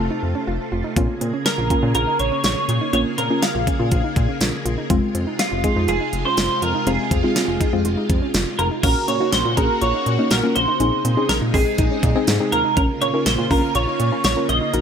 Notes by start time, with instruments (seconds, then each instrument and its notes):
Already playing: string machine C3 A3 F4, synth pluck A3 C4 F4, clean electric guitar A4
0.10 synth arpeggio sound D#4
0.23 analog synth bass F2
0.35 synth arpeggio sound C#4
0.47 analog synth bass F1, synth arpeggio sound F4
0.72 analog synth bass F1, synth arpeggio sound F4
0.84 synth arpeggio sound D#4
0.96 analog synth bass A#1, string machine C#3 A#3 G#4, synth pluck A#3 C#4 F4, synth arpeggio sound C4, kick, closed hi-hat
1.21 analog synth bass A#2, synth arpeggio sound C4, closed hi-hat
1.33 synth arpeggio sound C#4
1.46 clean electric guitar A#4, snare, closed hi-hat
1.58 analog synth bass A#1, synth arpeggio sound F4
1.70 synth pluck A#3 C#4 F4, synth arpeggio sound C#4, kick, closed hi-hat
1.83 analog synth bass A#2, synth pluck A#3 C#4 F4
1.95 analog synth bass A#1, synth arpeggio sound F4, clean electric guitar A#4, closed hi-hat
2.07 synth arpeggio sound D#4
2.19 analog synth bass A#1, clean electric guitar C#5, closed hi-hat
2.32 synth arpeggio sound C#4
2.44 analog synth bass A#1, synth arpeggio sound F4, clean electric guitar C#5, snare, closed hi-hat
2.69 analog synth bass A#2, synth arpeggio sound F4, closed hi-hat
2.81 synth arpeggio sound D#4
2.93 analog synth bass A#1, synth pluck A#3 C#4 F4, synth arpeggio sound C4, clean electric guitar C#5, closed hi-hat
3.18 analog synth bass A#2, synth arpeggio sound C4, clean electric guitar A#4, closed hi-hat
3.30 synth pluck A#3 C#4 F4, synth arpeggio sound C#4
3.43 clean electric guitar F5, snare, closed hi-hat
3.55 analog synth bass A#1, synth arpeggio sound F4
3.67 synth arpeggio sound C#4, kick, closed hi-hat
3.79 analog synth bass A#2, synth pluck A#3 C#4 F4
3.91 analog synth bass A#1, synth arpeggio sound F4, kick, closed hi-hat
4.04 synth arpeggio sound D#4
4.16 analog synth bass A#2, kick, closed hi-hat
4.29 synth arpeggio sound C#4
4.41 analog synth bass A#1, synth arpeggio sound F4, snare, closed hi-hat
4.65 analog synth bass A#1, synth arpeggio sound F4, closed hi-hat
4.78 synth arpeggio sound D#4
4.90 analog synth bass F1, string machine C3 G#3 F4, synth pluck G#3 C4 F4, synth arpeggio sound C4, kick, closed hi-hat
5.15 analog synth bass F2, synth arpeggio sound C4, closed hi-hat
5.27 synth arpeggio sound D#4
5.39 clean electric guitar F4, snare, closed hi-hat
5.52 analog synth bass F1, synth arpeggio sound F4
5.64 synth pluck G#3 C4 G#4, synth arpeggio sound D#4, kick, closed hi-hat
5.76 analog synth bass F2, synth pluck G#3 C4 D#4
5.88 analog synth bass F1, synth arpeggio sound F4, clean electric guitar G#4, closed hi-hat
6.01 synth arpeggio sound D#4
6.13 analog synth bass F1, closed hi-hat
6.25 synth arpeggio sound C#4, clean electric guitar C5
6.37 analog synth bass F1, synth arpeggio sound F4, snare, closed hi-hat
6.62 analog synth bass F2, synth arpeggio sound F4, clean electric guitar A#4, closed hi-hat
6.74 synth arpeggio sound D#4
6.87 analog synth bass F1, synth pluck G#3 C4 F4, synth arpeggio sound C4, clean electric guitar G#4, closed hi-hat
7.11 analog synth bass F2, synth arpeggio sound C4, kick, closed hi-hat
7.24 synth pluck G#3 C4 F4, synth arpeggio sound D#4
7.36 snare, closed hi-hat
7.48 analog synth bass F1, synth arpeggio sound F4
7.61 synth arpeggio sound D#4, kick, closed hi-hat
7.73 analog synth bass F2, synth pluck G#3 C4 F4
7.85 analog synth bass F1, synth arpeggio sound F4, closed hi-hat
7.97 synth arpeggio sound D#4
8.10 analog synth bass F2, kick, closed hi-hat
8.22 synth arpeggio sound C#4
8.34 analog synth bass F1, synth arpeggio sound F4, snare, closed hi-hat
8.59 analog synth bass F1, synth arpeggio sound F4, clean electric guitar A#4, closed hi-hat
8.71 synth arpeggio sound D#4
8.83 analog synth bass A#1, string machine C#3 A#3 F#4, synth pluck A#3 C#4 F#4, synth arpeggio sound C#4, clean electric guitar A#4, kick, closed hi-hat, crash
9.08 analog synth bass A#2, synth arpeggio sound C#4, clean electric guitar C#5, closed hi-hat
9.20 synth pluck A#3 C#4 F#4, synth arpeggio sound D#4
9.32 analog synth bass A#1, clean electric guitar C5, snare, closed hi-hat
9.45 analog synth bass A#2, synth arpeggio sound F4
9.57 analog synth bass A#1, synth pluck A#3 C#4 G#4, synth arpeggio sound C#4, clean electric guitar A#4, kick, closed hi-hat
9.81 analog synth bass A#1, synth arpeggio sound F4, clean electric guitar C#5, closed hi-hat
9.94 synth arpeggio sound D#4
10.06 analog synth bass A#2, closed hi-hat
10.19 synth pluck A#3 C#4 D#4, synth arpeggio sound C#4
10.31 analog synth bass A#1, synth arpeggio sound F#4, clean electric guitar A#4, snare, closed hi-hat
10.43 synth pluck A#3 C#4 F4
10.56 analog synth bass A#1, synth arpeggio sound F4, clean electric guitar C5, closed hi-hat
10.68 synth arpeggio sound D#4
10.80 analog synth bass A#1, string machine C3 G#3 D#4, synth arpeggio sound C4, synth pluck C4 D#4 G#4, closed hi-hat
11.05 analog synth bass A#2, synth arpeggio sound C4, closed hi-hat
11.17 synth pluck C4 D#4 G#4, synth arpeggio sound C#4
11.29 analog synth bass A#1, clean electric guitar A#4, snare, closed hi-hat
11.42 analog synth bass A#2, synth arpeggio sound D#4
11.54 analog synth bass A#1, synth pluck C4 D#4 G#4, synth arpeggio sound C4, clean electric guitar G#4, kick, open hi-hat
11.78 analog synth bass A#1, synth arpeggio sound D#4, kick, closed hi-hat
11.91 synth arpeggio sound C#4
12.03 analog synth bass A#2, kick, closed hi-hat
12.15 synth arpeggio sound C4, synth pluck C4 D#4 G#4
12.27 analog synth bass G#2, synth arpeggio sound D#4, snare, closed hi-hat
12.40 synth pluck C4 D#4 G#4
12.52 analog synth bass D#2, synth arpeggio sound F4, clean electric guitar A#4, closed hi-hat
12.65 synth arpeggio sound D#4
12.77 analog synth bass A#1, string machine C#3 A#3 F4, synth arpeggio sound C#4, synth pluck C#4 F4 A#4, clean electric guitar A#4, kick, closed hi-hat
13.01 analog synth bass A#2, synth arpeggio sound C#4, clean electric guitar C#5, closed hi-hat
13.14 synth pluck C#4 F4 A#4, synth arpeggio sound D#4
13.26 analog synth bass A#1, clean electric guitar C5, snare, closed hi-hat
13.38 analog synth bass A#2, synth arpeggio sound F4
13.51 analog synth bass A#1, synth arpeggio sound C#4, synth pluck C#4 F4 A#4, clean electric guitar A#4, kick, open hi-hat
13.75 analog synth bass A#1, synth arpeggio sound F4, clean electric guitar C#5, closed hi-hat
13.87 synth arpeggio sound D#4
14.00 analog synth bass A#2, closed hi-hat
14.12 synth arpeggio sound C#4, synth pluck C#4 F4 A#4
14.24 analog synth bass A#1, synth arpeggio sound F4, clean electric guitar C#5, snare, closed hi-hat
14.37 synth pluck C#4 F4 A#4
14.49 analog synth bass A#1, synth arpeggio sound F4, clean electric guitar D#5, closed hi-hat
14.61 synth arpeggio sound D#4
14.73 analog synth bass A#1, string machine D#3 F#4, synth pluck D#4 F#4 A#4, synth arpeggio sound D#4, closed hi-hat